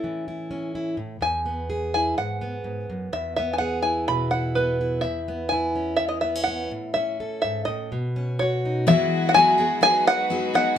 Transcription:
0.00 0.95 A2 medium
0.00 0.95 E3 soft
0.00 0.49 C#4 soft
0.00 0.27 E4 soft
0.00 0.96 A4 soft
0.28 0.74 E4 soft
0.51 0.95 C#4 soft
0.75 0.95 E4 medium
0.97 1.18 A2 medium
1.21 2.17 E2 medium
1.21 1.93 G#5 medium
1.46 2.41 B3 soft
1.70 2.93 G#4 medium
1.94 2.15 E4 soft
1.94 2.16 G#5 medium
2.18 2.63 G#2 medium
2.18 2.85 F#5 medium
2.41 3.38 B3 soft
2.64 2.88 G#2 medium
2.90 3.12 F#2 soft
3.13 5.03 E2 medium
3.13 3.35 E5 medium
3.36 4.56 B3 soft
3.36 3.53 E5 medium
3.53 3.58 G#5 medium
3.58 5.01 G#4 medium
3.58 3.82 F#5 medium
3.82 4.33 E4 soft
3.82 4.07 G#5 medium
4.08 5.04 B2 medium
4.08 4.30 B5 medium
4.31 4.80 E4 soft
4.31 4.56 F#5 medium
4.55 5.02 B3 medium
4.55 5.05 B4 medium
4.81 5.52 E4 soft
5.01 5.99 E2 medium
5.01 5.52 E5 medium
5.28 6.22 B3 soft
5.49 7.20 E4 medium
5.49 5.96 G#5 medium
5.75 6.23 C#4 soft
5.96 6.71 E2 medium
5.96 6.08 E5 medium
6.09 6.21 D#5 medium
6.21 6.36 B3 soft
6.21 6.43 E5 medium
6.36 6.71 C#4 soft
6.44 6.93 F#5 medium
6.48 6.69 B3 medium
6.71 7.43 A2 medium
6.94 7.88 C#4 medium
6.94 7.39 E5 medium
7.20 7.89 A4 medium
7.42 7.67 G#2 medium
7.42 7.65 E5 medium
7.65 7.91 A2 medium
7.65 8.58 D#5 medium
7.92 8.87 B2 medium
8.16 8.84 C#4 soft
8.39 8.85 F#4 medium
8.39 8.88 C#5 medium
8.65 8.85 D#4 soft
8.87 9.34 E3 medium
8.87 9.34 F#3 medium
8.87 10.78 G#3 medium
8.87 9.35 B3 medium
8.87 9.81 E4 medium
8.87 9.35 E4 medium
8.87 9.81 F#4 medium
8.87 9.36 G#4 medium
8.87 9.28 E5 medium
9.29 9.34 F#5 medium
9.34 9.58 F#3 medium
9.34 9.58 B3 medium
9.34 9.58 E4 medium
9.34 9.57 G#4 medium
9.34 9.82 G#5 loud
9.58 9.81 B3 soft
9.58 9.82 E4 soft
9.58 9.82 G#4 medium
9.81 10.29 F#3 medium
9.81 10.30 B3 medium
9.81 10.30 D#4 medium
9.81 10.78 F#4 medium
9.81 10.31 G#4 medium
9.81 10.77 B4 medium
9.81 10.04 G#5 loud
10.07 10.51 F#5 loud
10.30 10.54 F#3 medium
10.30 10.53 B3 medium
10.30 10.53 D#4 medium
10.30 10.52 G#4 medium
10.54 10.75 F#3 soft
10.54 10.76 B3 medium
10.54 10.77 D#4 medium
10.54 10.77 G#4 medium
10.54 10.78 F#5 loud

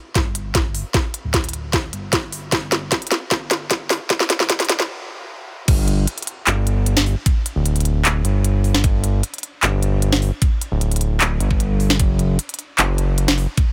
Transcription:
0.15 0.84 G1 loud
0.15 kick medium
0.15 snare soft
0.15 closed hi-hat medium
0.35 closed hi-hat medium
0.55 kick medium
0.55 snare medium
0.55 closed hi-hat medium
0.75 open hi-hat medium
0.94 kick loud
0.94 snare medium
0.94 closed hi-hat medium
1.14 closed hi-hat medium
1.24 1.92 D1 loud
1.34 kick medium
1.34 snare medium
1.34 closed hi-hat medium
1.44 closed hi-hat medium
1.49 closed hi-hat medium
1.53 closed hi-hat medium
1.73 kick medium
1.73 snare medium
1.73 closed hi-hat medium
1.93 2.51 G1 medium
1.93 closed hi-hat medium
2.13 kick loud
2.13 snare medium
2.13 closed hi-hat medium
2.32 open hi-hat medium
2.52 2.90 G1 loud
2.52 kick medium
2.52 snare medium
2.52 closed hi-hat medium
2.72 snare medium
2.72 closed hi-hat medium
2.92 kick loud
2.92 snare medium
2.92 closed hi-hat medium
3.02 closed hi-hat medium
3.07 closed hi-hat medium
3.11 snare medium
3.11 closed hi-hat medium
3.31 3.99 G1 loud
3.31 kick medium
3.31 snare medium
3.31 closed hi-hat medium
3.51 snare medium
3.51 closed hi-hat medium
3.71 kick loud
3.71 snare medium
3.71 closed hi-hat medium
3.90 snare medium
3.90 open hi-hat medium
4.10 kick loud
4.10 snare medium
4.10 closed hi-hat medium
4.20 snare medium
4.30 snare medium
4.30 closed hi-hat medium
4.40 4.89 D1 loud
4.40 snare medium
4.50 kick loud
4.50 snare loud
4.50 closed hi-hat medium
4.60 snare medium
4.60 closed hi-hat medium
4.65 closed hi-hat medium
4.69 snare loud
4.69 closed hi-hat medium
4.80 snare medium
5.68 6.06 G1 loud
5.68 kick loud
5.68 closed hi-hat medium
5.68 crash loud
5.88 closed hi-hat medium
6.07 closed hi-hat medium
6.18 closed hi-hat medium
6.22 closed hi-hat medium
6.27 closed hi-hat medium
6.47 7.15 G1 loud
6.47 clap loud
6.47 closed hi-hat medium
6.67 closed hi-hat medium
6.86 closed hi-hat medium
6.97 snare medium
7.06 open hi-hat medium
7.26 kick loud
7.26 closed hi-hat medium
7.46 closed hi-hat medium
7.56 8.23 D1 loud
7.66 closed hi-hat medium
7.76 closed hi-hat medium
7.80 closed hi-hat medium
7.85 closed hi-hat medium
8.05 clap loud
8.05 closed hi-hat medium
8.25 8.83 G1 medium
8.25 closed hi-hat medium
8.45 closed hi-hat medium
8.64 open hi-hat medium
8.74 snare medium
8.84 9.22 G1 loud
8.84 kick loud
8.84 closed hi-hat medium
9.04 closed hi-hat medium
9.23 closed hi-hat medium
9.34 closed hi-hat soft
9.38 closed hi-hat medium
9.43 closed hi-hat medium
9.63 10.31 G1 loud
9.63 clap loud
9.63 closed hi-hat medium
9.83 closed hi-hat medium
10.02 closed hi-hat medium
10.12 snare medium
10.22 open hi-hat medium
10.42 kick loud
10.42 closed hi-hat medium
10.61 closed hi-hat medium
10.72 11.39 D1 medium
10.81 closed hi-hat medium
10.92 closed hi-hat medium
10.96 closed hi-hat medium
11.01 closed hi-hat medium
11.21 clap loud
11.21 closed hi-hat medium
11.40 11.98 G1 medium
11.40 closed hi-hat medium
11.51 kick medium
11.60 closed hi-hat medium
11.80 open hi-hat medium
11.90 snare medium
11.99 12.38 F#1 loud
11.99 kick loud
11.99 closed hi-hat medium
12.19 closed hi-hat medium
12.39 closed hi-hat medium
12.49 closed hi-hat medium
12.54 closed hi-hat medium
12.59 closed hi-hat medium
12.79 13.47 F#1 loud
12.79 clap loud
12.79 closed hi-hat medium
12.98 closed hi-hat medium
13.18 closed hi-hat medium
13.28 snare medium
13.38 open hi-hat medium
13.57 kick loud
13.57 closed hi-hat medium

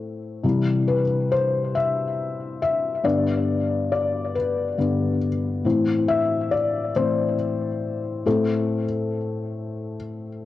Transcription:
0.43 1.01 C3 soft
0.43 1.02 E3 soft
0.43 1.02 G3 soft
0.88 1.32 B4 medium
1.32 1.76 C5 medium
1.75 2.61 E5 medium
2.62 3.06 E5 medium
3.04 4.76 G2 soft
3.04 4.77 D3 soft
3.04 4.77 B3 soft
3.04 3.90 D5 medium
3.92 4.36 D5 medium
4.35 5.29 B4 soft
4.78 5.17 G2 soft
4.78 5.18 D3 soft
4.78 5.18 B3 soft
5.65 6.91 A2 soft
5.65 6.91 E3 soft
5.65 6.92 C4 soft
6.08 6.53 E5 medium
6.51 6.92 D5 medium
6.96 7.35 A2 soft
6.96 7.35 E3 soft
6.96 7.35 C4 soft
6.96 8.22 C5 medium
8.26 8.83 A2 soft
8.26 8.84 A3 soft
8.26 8.84 C4 soft
8.26 9.96 A4 medium

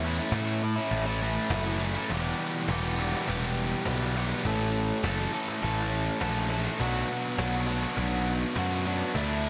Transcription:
0.00 0.19 E2 loud
0.00 0.31 A2 medium
0.00 cajon slap soft
0.04 0.32 E3 medium
0.04 0.21 A3 medium
0.04 0.19 C#4 medium
0.04 0.17 E4 medium
0.18 0.32 A3 medium
0.18 0.34 C#4 medium
0.18 0.34 E4 medium
0.32 0.78 A2 medium
0.32 0.91 A2 medium
0.32 0.61 E3 loud
0.32 0.62 A3 medium
0.32 0.62 C#4 loud
0.32 0.62 E4 loud
0.32 cajon bass loud
0.32 cajon slap loud
0.63 muted overdriven electric guitar stroke soft
0.76 1.08 A3 medium
0.76 1.07 C#4 medium
0.76 1.05 E4 medium
0.76 cajon slap soft
0.91 1.37 A1 loud
0.91 cajon bass loud
1.06 1.20 A3 medium
1.06 1.22 C#4 medium
1.06 1.23 E4 medium
1.21 1.50 E3 medium
1.21 1.51 A3 medium
1.21 1.52 C#4 medium
1.21 1.53 E4 medium
1.50 1.96 F#1 medium
1.50 1.94 A2 loud
1.50 1.79 E3 loud
1.50 1.67 A3 loud
1.50 1.65 C#4 loud
1.50 1.63 E4 loud
1.50 cajon bass loud
1.50 cajon slap loud
1.65 1.80 A3 medium
1.65 1.81 C#4 medium
1.65 1.82 E4 medium
1.80 2.07 E3 medium
1.80 1.96 A3 medium
1.80 1.95 C#4 medium
1.80 1.93 E4 medium
1.80 cajon slap soft
1.95 2.09 A3 medium
1.95 2.08 C#4 medium
1.95 2.07 E4 medium
2.09 2.32 E1 loud
2.09 2.68 E2 medium
2.09 2.68 B2 medium
2.09 2.70 E3 medium
2.09 2.69 G3 medium
2.09 2.69 B3 loud
2.09 2.70 G4 medium
2.09 cajon bass loud
2.68 3.14 E1 medium
2.68 2.96 E2 medium
2.68 2.97 B2 medium
2.68 2.98 E3 medium
2.68 2.98 G3 medium
2.68 2.99 B3 medium
2.68 3.00 G4 medium
2.68 cajon bass loud
2.68 cajon slap loud
2.97 3.26 E2 medium
2.97 3.27 B2 medium
2.97 3.27 E3 medium
2.97 3.28 G3 medium
2.97 3.28 B3 medium
2.97 3.29 G4 medium
3.13 cajon slap medium
3.28 3.73 E1 loud
3.28 3.85 E2 medium
3.28 3.86 B2 medium
3.28 3.86 E3 loud
3.28 3.87 G3 loud
3.28 3.88 B3 medium
3.28 3.88 G4 loud
3.28 cajon bass loud
3.85 4.32 B1 medium
3.85 4.14 E2 medium
3.85 4.14 B2 medium
3.85 4.15 E3 medium
3.85 4.16 G3 medium
3.85 4.16 B3 medium
3.85 4.17 G4 medium
3.85 cajon bass loud
3.85 cajon slap loud
4.15 4.43 E2 medium
4.15 4.43 B2 medium
4.15 4.43 E3 medium
4.15 4.44 G3 medium
4.15 4.44 B3 medium
4.15 4.44 G4 medium
4.15 cajon slap medium
4.45 4.91 A1 loud
4.45 5.01 A2 medium
4.45 5.03 E3 medium
4.45 5.03 A3 medium
4.45 5.04 C#4 loud
4.45 5.04 A4 loud
4.45 cajon bass loud
5.02 5.26 F#1 medium
5.02 5.31 A2 medium
5.02 5.32 E3 medium
5.02 5.32 A3 medium
5.02 5.34 C#4 medium
5.02 5.34 A4 medium
5.02 cajon bass loud
5.02 cajon slap loud
5.33 5.61 A2 medium
5.33 5.61 E3 medium
5.33 5.62 A3 medium
5.33 5.62 C#4 medium
5.33 5.62 A4 medium
5.48 cajon slap medium
5.62 6.08 A1 loud
5.62 6.20 A2 loud
5.62 6.21 E3 medium
5.62 6.21 A3 loud
5.62 6.21 C#4 loud
5.62 6.22 A4 loud
5.62 cajon bass loud
6.21 6.67 A#1 medium
6.21 6.49 A2 medium
6.21 6.49 E3 medium
6.21 6.50 A3 medium
6.21 6.50 C#4 loud
6.21 6.51 A4 medium
6.21 cajon bass loud
6.21 cajon slap loud
6.50 6.78 A2 medium
6.50 6.78 E3 medium
6.50 6.78 A3 medium
6.50 6.78 C#4 medium
6.50 6.79 A4 medium
6.50 cajon slap medium
6.79 7.03 B1 loud
6.79 7.37 B2 medium
6.79 7.37 F#3 loud
6.79 7.39 B3 medium
6.79 7.39 D4 loud
6.79 7.39 F#4 loud
6.79 cajon bass loud
7.38 7.84 B1 loud
7.38 7.65 B2 medium
7.38 7.66 F#3 medium
7.38 7.67 B3 medium
7.38 7.68 D4 medium
7.38 7.67 F#4 loud
7.38 cajon bass loud
7.38 cajon slap loud
7.67 7.95 B2 medium
7.67 7.96 F#3 medium
7.67 7.96 B3 medium
7.67 7.97 D4 medium
7.67 7.97 F#4 medium
7.82 cajon slap medium
7.96 8.43 B1 loud
7.96 8.55 B2 medium
7.96 8.56 F#3 medium
7.96 8.56 B3 loud
7.96 8.57 D4 medium
7.96 8.57 F#4 medium
7.96 cajon bass loud
8.56 9.02 F#2 medium
8.56 8.84 B2 medium
8.56 8.85 F#3 medium
8.56 8.85 B3 medium
8.56 8.86 D4 medium
8.56 8.86 F#4 loud
8.56 cajon bass loud
8.56 cajon slap loud
8.85 9.13 B2 medium
8.85 9.14 F#3 medium
8.85 9.14 B3 medium
8.85 9.14 D4 loud
8.85 9.14 F#4 medium
8.85 cajon slap medium
9.14 9.49 D2 loud
9.14 9.49 D3 medium
9.14 9.49 A3 loud
9.14 9.49 D4 loud
9.14 9.49 E4 loud
9.14 cajon bass loud

